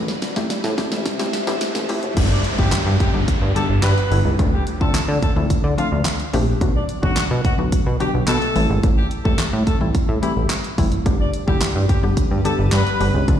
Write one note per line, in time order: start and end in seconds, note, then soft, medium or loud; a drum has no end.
0.00 0.15 A1 loud
0.00 0.22 A3 loud
0.00 0.22 C4 medium
0.00 0.23 E4 medium
0.00 0.23 G4 loud
0.00 2.14 G4 medium
0.00 2.14 C5 medium
0.00 2.14 E5 medium
0.00 2.14 A5 medium
0.00 riser medium
0.08 snare loud
0.22 snare loud
0.22 closed hi-hat medium
0.36 0.47 A1 medium
0.36 0.59 A3 medium
0.36 0.60 C4 medium
0.36 0.60 E4 medium
0.36 0.60 G4 loud
0.36 kick medium
0.36 snare loud
0.50 0.56 A2 soft
0.50 snare loud
0.50 closed hi-hat loud
0.64 0.74 A2 loud
0.64 snare loud
0.78 1.01 A3 medium
0.78 1.01 C4 medium
0.78 1.01 E4 medium
0.78 1.01 G4 medium
0.78 kick loud
0.78 snare loud
0.78 closed hi-hat medium
0.92 1.07 A1 medium
0.92 snare loud
1.06 1.26 C2 medium
1.06 kick loud
1.06 snare loud
1.06 closed hi-hat loud
1.19 1.35 A3 medium
1.19 1.35 C4 medium
1.19 1.35 E4 medium
1.19 1.35 G4 medium
1.19 snare loud
1.33 1.39 A1 soft
1.33 snare loud
1.33 closed hi-hat medium
1.47 1.58 A1 loud
1.47 1.70 A3 medium
1.47 1.71 C4 medium
1.47 1.71 E4 medium
1.47 1.71 G4 loud
1.47 snare loud
1.61 snare loud
1.61 closed hi-hat loud
1.75 1.86 A1 loud
1.75 snare loud
1.75 closed hi-hat medium
1.89 2.00 F1 medium
1.89 2.04 A3 medium
1.89 2.05 C4 medium
1.89 2.05 E4 medium
1.89 2.05 G4 loud
1.89 open hi-hat medium
2.03 2.13 F#1 loud
2.03 closed hi-hat medium
2.17 2.38 G1 loud
2.17 2.40 D3 medium
2.17 2.40 G3 medium
2.17 2.40 B3 medium
2.17 2.40 D4 medium
2.17 2.40 G4 medium
2.17 kick loud
2.17 closed hi-hat medium
2.17 crash loud
2.17 downlifter medium
2.31 2.41 D4 medium
2.31 2.42 D5 medium
2.44 closed hi-hat medium
2.58 2.69 G1 loud
2.58 2.89 D3 medium
2.58 2.89 G3 medium
2.58 2.80 G3 medium
2.58 2.89 B3 medium
2.58 2.90 D4 medium
2.58 2.80 G4 medium
2.58 2.90 G4 medium
2.58 kick medium
2.72 2.78 G2 soft
2.72 snare loud
2.72 clap loud
2.72 closed hi-hat medium
2.86 2.97 G2 loud
3.00 3.11 G3 medium
3.00 3.11 G4 medium
3.00 kick loud
3.00 closed hi-hat medium
3.14 3.24 G1 medium
3.14 3.37 D3 medium
3.14 3.37 G3 medium
3.14 3.37 B3 medium
3.14 3.37 D4 medium
3.14 3.37 G4 medium
3.28 3.34 G2 medium
3.28 kick loud
3.28 closed hi-hat loud
3.42 3.52 G2 loud
3.56 3.87 D3 medium
3.56 3.87 G3 medium
3.56 3.67 A3 medium
3.56 3.87 B3 medium
3.56 3.87 D4 medium
3.56 3.87 G4 medium
3.56 3.66 A4 medium
3.56 closed hi-hat medium
3.69 3.80 G1 medium
3.83 3.94 G2 loud
3.83 4.23 B3 medium
3.83 4.23 B4 medium
3.83 snare loud
3.83 clap loud
3.83 closed hi-hat loud
3.98 closed hi-hat medium
4.11 4.21 G1 medium
4.11 4.27 D3 medium
4.11 4.27 G3 medium
4.11 4.27 B3 medium
4.11 4.27 D4 medium
4.11 4.27 E4 medium
4.11 open hi-hat medium
4.25 4.35 C#2 medium
4.39 4.60 D2 loud
4.39 4.62 F3 medium
4.39 4.62 A3 medium
4.39 4.62 C4 medium
4.39 4.62 D4 medium
4.39 4.63 F4 medium
4.39 kick loud
4.39 closed hi-hat medium
4.53 4.64 G3 medium
4.53 4.64 G4 medium
4.67 closed hi-hat medium
4.81 4.91 D2 loud
4.81 5.12 F3 medium
4.81 5.12 A3 medium
4.81 5.02 A3 medium
4.81 5.12 C4 medium
4.81 5.12 D4 medium
4.81 5.12 F4 medium
4.81 5.02 A4 medium
4.81 kick medium
4.94 5.00 D3 medium
4.94 snare loud
4.94 clap loud
4.94 closed hi-hat loud
5.08 5.19 D3 loud
5.23 5.34 A3 medium
5.23 5.33 A4 medium
5.23 kick loud
5.23 closed hi-hat medium
5.36 5.47 D2 medium
5.36 5.59 F3 medium
5.36 5.59 A3 medium
5.36 5.59 C4 medium
5.36 5.60 D4 medium
5.36 5.60 E4 medium
5.50 5.56 D3 soft
5.50 kick loud
5.50 closed hi-hat loud
5.64 5.74 D3 loud
5.78 6.09 F3 medium
5.78 5.89 F3 medium
5.78 6.09 A3 medium
5.78 6.09 C4 medium
5.78 6.09 D4 medium
5.78 5.89 F4 medium
5.78 6.09 F4 medium
5.78 closed hi-hat medium
5.92 6.02 D2 medium
6.05 snare loud
6.05 clap loud
6.05 closed hi-hat loud
6.20 closed hi-hat medium
6.33 6.54 A#1 medium
6.33 6.49 F3 medium
6.33 6.49 A3 medium
6.33 6.49 C4 medium
6.33 6.49 D4 medium
6.33 6.49 G4 loud
6.33 open hi-hat medium
6.61 6.82 B1 loud
6.61 6.84 D3 medium
6.61 6.84 F#3 medium
6.61 6.84 B3 medium
6.61 6.84 D4 medium
6.61 6.85 F#4 medium
6.61 kick loud
6.61 closed hi-hat medium
6.75 6.86 D4 medium
6.75 6.86 D5 medium
6.89 closed hi-hat medium
7.03 7.13 B1 loud
7.03 7.34 D3 medium
7.03 7.34 F#3 medium
7.03 7.25 F#3 medium
7.03 7.34 B3 medium
7.03 7.34 D4 medium
7.03 7.24 F#4 medium
7.03 7.34 F#4 medium
7.03 kick medium
7.16 7.23 B2 soft
7.16 snare loud
7.16 clap loud
7.16 closed hi-hat loud
7.31 7.41 B2 loud
7.44 7.56 F#3 medium
7.44 7.55 F#4 medium
7.44 kick loud
7.44 closed hi-hat medium
7.58 7.69 B1 medium
7.58 7.81 D3 medium
7.58 7.82 F#3 medium
7.58 7.82 B3 medium
7.58 7.82 D4 medium
7.58 7.82 F#4 medium
7.72 7.78 B2 soft
7.72 kick loud
7.72 closed hi-hat loud
7.87 7.97 B2 medium
8.00 8.31 D3 medium
8.00 8.31 F#3 medium
8.00 8.11 G3 medium
8.00 8.31 B3 medium
8.00 8.31 D4 medium
8.00 8.31 F#4 medium
8.00 8.11 G4 medium
8.00 closed hi-hat medium
8.14 8.25 B1 medium
8.27 8.38 B2 loud
8.27 8.67 A3 medium
8.27 8.67 A4 medium
8.27 snare loud
8.27 clap loud
8.27 closed hi-hat loud
8.42 closed hi-hat medium
8.55 8.66 A1 loud
8.55 9.11 E3 medium
8.55 9.11 G3 medium
8.55 9.11 A3 medium
8.55 9.11 C4 medium
8.55 9.11 E4 loud
8.55 open hi-hat medium
8.70 8.80 G#1 loud
8.83 9.04 A1 loud
8.83 kick loud
8.83 closed hi-hat medium
8.97 9.08 G3 medium
8.97 9.08 G4 medium
9.11 closed hi-hat medium
9.25 9.36 A1 loud
9.25 9.56 E3 medium
9.25 9.56 G3 medium
9.25 9.56 A3 medium
9.25 9.47 A3 medium
9.25 9.56 C4 medium
9.25 9.56 G4 medium
9.25 9.46 A4 medium
9.25 kick medium
9.38 9.45 A2 medium
9.38 snare loud
9.38 clap loud
9.38 closed hi-hat loud
9.53 9.63 A2 loud
9.67 9.78 A3 medium
9.67 9.77 A4 medium
9.67 kick loud
9.67 closed hi-hat medium
9.81 9.91 A1 medium
9.81 10.04 E3 medium
9.81 10.04 G3 medium
9.81 10.04 A3 medium
9.81 10.04 C4 medium
9.81 10.04 E4 medium
9.95 10.00 A2 soft
9.95 kick loud
9.95 closed hi-hat loud
10.09 10.19 A2 loud
10.22 10.53 E3 medium
10.22 10.33 E3 medium
10.22 10.53 G3 medium
10.22 10.53 A3 medium
10.22 10.54 C4 medium
10.22 10.33 E4 medium
10.22 10.54 G4 medium
10.22 closed hi-hat medium
10.36 10.47 A1 medium
10.49 snare medium
10.49 clap loud
10.49 closed hi-hat loud
10.64 closed hi-hat medium
10.78 10.99 F#1 loud
10.78 10.93 E3 loud
10.78 10.93 G3 medium
10.78 10.94 A3 medium
10.78 10.94 C4 medium
10.78 10.94 E4 loud
10.78 kick loud
10.78 open hi-hat medium
10.92 closed hi-hat medium
11.06 11.27 G1 loud
11.06 11.29 D3 medium
11.06 11.29 G3 medium
11.06 11.29 B3 medium
11.06 11.29 D4 medium
11.06 11.29 G4 medium
11.06 13.26 G4 medium
11.06 13.26 B4 medium
11.06 13.40 D5 medium
11.06 13.26 B5 medium
11.06 kick loud
11.06 closed hi-hat medium
11.20 11.30 D4 medium
11.20 11.31 D5 medium
11.34 closed hi-hat medium
11.47 11.58 G1 loud
11.47 11.78 D3 medium
11.47 11.78 G3 medium
11.47 11.69 G3 medium
11.47 11.78 B3 medium
11.47 11.78 D4 medium
11.47 11.79 E4 medium
11.47 11.69 G4 medium
11.47 kick medium
11.61 11.67 G2 medium
11.61 snare loud
11.61 clap loud
11.61 closed hi-hat loud
11.75 11.86 G2 loud
11.89 12.00 G3 medium
11.89 12.00 G4 medium
11.89 kick loud
11.89 closed hi-hat medium
12.03 12.13 G1 medium
12.03 12.26 D3 medium
12.03 12.26 G3 medium
12.03 12.26 B3 medium
12.03 12.26 D4 medium
12.03 12.26 G4 medium
12.17 kick loud
12.17 closed hi-hat loud
12.31 12.41 G2 loud
12.45 12.76 D3 medium
12.45 12.76 G3 medium
12.45 12.56 A3 medium
12.45 12.76 B3 medium
12.45 12.76 D4 medium
12.45 12.76 G4 medium
12.45 12.55 A4 medium
12.45 closed hi-hat medium
12.59 12.69 G1 medium
12.72 12.83 G2 loud
12.72 13.12 B3 medium
12.72 13.12 B4 medium
12.72 snare loud
12.72 clap loud
12.72 closed hi-hat loud
12.87 closed hi-hat medium
13.00 13.11 G1 loud
13.00 13.16 D3 medium
13.00 13.16 G3 medium
13.00 13.16 B3 medium
13.00 13.16 D4 medium
13.00 13.16 G4 medium
13.00 open hi-hat medium
13.14 13.25 C#2 medium
13.28 13.40 D2 loud
13.28 13.40 F3 medium
13.28 13.40 A3 medium
13.28 13.40 C4 medium
13.28 13.40 D4 medium
13.28 13.40 F4 medium
13.28 kick loud
13.28 closed hi-hat medium